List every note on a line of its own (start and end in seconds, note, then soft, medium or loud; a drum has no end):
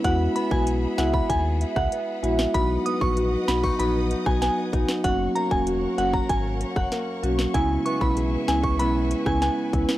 0.00 0.35 B3 medium
0.00 0.11 C#4 medium
0.00 0.66 G#4 medium
0.00 2.50 E5 medium
0.00 2.50 B5 medium
0.04 0.28 E2 loud
0.04 0.22 G#3 loud
0.04 0.22 B3 medium
0.04 0.22 E4 medium
0.04 0.22 F#4 loud
0.04 2.52 G#4 medium
0.04 5.00 F#5 medium
0.04 0.16 F#5 loud
0.04 kick loud
0.04 closed hi-hat medium
0.36 1.29 B3 medium
0.36 0.47 B5 medium
0.36 closed hi-hat medium
0.51 0.87 B1 medium
0.51 0.94 G#3 medium
0.51 0.94 B3 medium
0.51 0.94 E4 medium
0.51 0.95 F#4 medium
0.51 0.63 G#5 medium
0.51 kick loud
0.67 2.61 G#4 medium
0.67 closed hi-hat medium
0.98 1.22 C#2 medium
0.98 1.27 G#3 medium
0.98 1.27 B3 medium
0.98 1.59 E4 medium
0.98 1.27 E4 medium
0.98 1.27 F#4 medium
0.98 1.10 F#5 medium
0.98 snare loud
0.98 closed hi-hat medium
1.14 1.26 B5 medium
1.14 kick medium
1.29 1.65 D#2 loud
1.29 1.92 B3 medium
1.29 1.41 G#5 medium
1.29 kick loud
1.29 closed hi-hat medium
1.61 2.22 E4 medium
1.61 closed hi-hat medium
1.76 1.88 C#2 medium
1.76 1.88 F#5 medium
1.76 kick loud
1.76 cross-stick loud
1.92 2.85 B3 medium
1.92 closed hi-hat medium
2.23 2.47 A#1 medium
2.23 2.41 G#3 medium
2.23 2.41 B3 medium
2.23 2.61 E4 medium
2.23 2.41 E4 medium
2.23 2.41 F#4 medium
2.23 closed hi-hat medium
2.39 snare loud
2.54 2.78 B1 loud
2.54 2.97 F#3 loud
2.54 2.98 B3 medium
2.54 2.98 D#4 medium
2.54 2.98 F#4 loud
2.54 5.02 B4 medium
2.54 5.02 D#5 medium
2.54 2.66 B5 loud
2.54 5.02 D#6 medium
2.54 kick loud
2.54 closed hi-hat loud
2.86 3.78 B3 medium
2.86 2.97 D#6 medium
2.86 closed hi-hat medium
3.01 3.37 A#1 medium
3.01 3.44 F#3 medium
3.01 3.44 B3 medium
3.01 3.44 D#4 medium
3.01 3.45 F#4 medium
3.01 3.13 C#6 medium
3.01 kick loud
3.17 5.66 F#4 medium
3.17 closed hi-hat medium
3.48 3.72 B1 medium
3.48 3.77 F#3 medium
3.48 3.77 B3 medium
3.48 3.64 C#4 medium
3.48 3.77 D#4 medium
3.48 3.77 F#4 medium
3.48 3.60 B5 medium
3.48 snare loud
3.48 closed hi-hat medium
3.64 4.09 D#4 medium
3.64 3.75 C#6 medium
3.64 kick medium
3.79 4.15 A#1 loud
3.79 3.97 F#3 loud
3.79 3.97 B3 medium
3.79 4.41 B3 medium
3.79 3.97 D#4 medium
3.79 3.97 F#4 loud
3.79 3.91 B5 medium
3.79 closed hi-hat medium
4.11 4.72 D#4 medium
4.11 closed hi-hat medium
4.26 4.50 B1 medium
4.26 4.44 F#3 medium
4.26 4.44 B3 medium
4.26 4.44 D#4 medium
4.26 4.44 F#4 medium
4.26 4.38 G#5 medium
4.26 kick loud
4.26 cross-stick medium
4.42 5.11 B3 medium
4.42 4.86 G#5 medium
4.42 snare medium
4.42 closed hi-hat medium
4.73 4.85 B1 medium
4.73 4.91 F#3 medium
4.73 4.91 B3 medium
4.73 4.91 D#4 medium
4.73 5.11 D#4 medium
4.73 4.91 F#4 medium
4.73 kick loud
4.73 closed hi-hat medium
4.89 snare loud
5.04 5.28 F#1 loud
5.04 7.54 F#2 medium
5.04 5.22 F#3 loud
5.04 5.22 A#3 medium
5.04 5.22 C#4 medium
5.04 5.22 F#4 loud
5.04 7.52 A#4 medium
5.04 7.52 C#5 medium
5.04 5.16 F#5 loud
5.04 7.52 F#5 medium
5.04 9.98 C#6 medium
5.04 kick loud
5.04 closed hi-hat loud
5.35 6.28 A#3 medium
5.35 5.47 A#5 medium
5.35 closed hi-hat medium
5.51 5.87 E1 medium
5.51 5.94 F#3 medium
5.51 5.94 A#3 medium
5.51 5.94 C#4 medium
5.51 5.94 F#4 medium
5.51 5.63 G#5 medium
5.51 kick loud
5.67 7.61 F#4 medium
5.67 closed hi-hat medium
5.98 6.22 F#1 medium
5.98 6.27 F#3 medium
5.98 6.27 A#3 medium
5.98 6.27 C#4 medium
5.98 6.60 C#4 medium
5.98 6.27 F#4 medium
5.98 6.10 F#5 medium
5.98 closed hi-hat medium
6.13 6.25 A#5 medium
6.13 kick medium
6.29 6.65 G#1 loud
6.29 6.91 A#3 medium
6.29 6.41 G#5 medium
6.29 kick medium
6.29 closed hi-hat medium
6.61 7.23 C#4 medium
6.61 closed hi-hat medium
6.76 6.88 F#1 medium
6.76 6.88 F#5 medium
6.76 kick medium
6.76 cross-stick medium
6.92 7.61 A#3 medium
6.92 snare medium
6.92 closed hi-hat medium
7.23 7.47 B1 loud
7.23 7.41 F#3 medium
7.23 7.41 A#3 medium
7.23 7.41 C#4 medium
7.23 7.89 C#4 medium
7.23 7.41 F#4 medium
7.23 closed hi-hat medium
7.39 snare loud
7.54 7.78 C#2 loud
7.54 9.98 C#3 medium
7.54 7.97 G#3 loud
7.54 7.97 B3 medium
7.54 7.97 C#4 medium
7.54 7.98 E4 loud
7.54 9.98 B4 medium
7.54 9.98 E5 medium
7.54 7.66 G#5 loud
7.54 9.98 G#5 medium
7.54 kick loud
7.54 closed hi-hat loud
7.86 8.79 B3 medium
7.86 7.97 C#6 medium
7.86 closed hi-hat medium
8.01 8.37 B1 loud
8.01 8.44 G#3 medium
8.01 8.44 B3 medium
8.01 8.44 C#4 medium
8.01 8.45 E4 medium
8.01 8.13 B5 medium
8.01 kick loud
8.17 9.98 G#4 medium
8.17 closed hi-hat medium
8.48 8.81 C#2 medium
8.48 8.77 G#3 medium
8.48 8.77 B3 medium
8.48 8.77 C#4 medium
8.48 9.10 C#4 medium
8.48 8.77 E4 medium
8.48 8.60 G#5 medium
8.48 snare loud
8.48 closed hi-hat medium
8.63 8.75 C#6 medium
8.63 kick medium
8.79 9.15 B1 loud
8.79 8.97 G#3 medium
8.79 8.97 B3 medium
8.79 9.42 B3 medium
8.79 8.97 C#4 medium
8.79 8.97 E4 loud
8.79 8.91 B5 medium
8.79 closed hi-hat medium
9.11 9.72 C#4 medium
9.11 closed hi-hat medium
9.26 9.50 C#2 loud
9.26 9.44 G#3 medium
9.26 9.44 B3 medium
9.26 9.44 C#4 medium
9.26 9.44 E4 medium
9.26 9.38 G#5 medium
9.26 kick medium
9.26 cross-stick loud
9.42 9.98 B3 medium
9.42 9.86 G#5 medium
9.42 snare medium
9.42 closed hi-hat medium
9.73 9.85 C#2 loud
9.73 9.91 G#3 medium
9.73 9.91 B3 medium
9.73 9.91 C#4 medium
9.73 9.98 C#4 medium
9.73 9.91 E4 medium
9.73 kick loud
9.73 closed hi-hat medium
9.89 snare loud